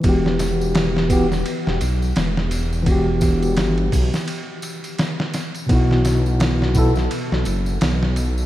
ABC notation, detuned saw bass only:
X:1
M:4/4
L:1/16
Q:"Swing 16ths" 1/4=85
K:Em
V:1 name="Detuned saw bass" clef=bass
E,,,8 z E,,, B,,,2 E,,,4- | E,,,4 G,,,2 B,,, z8 z | B,,,8 z B,,, F,,,2 B,,,4 |]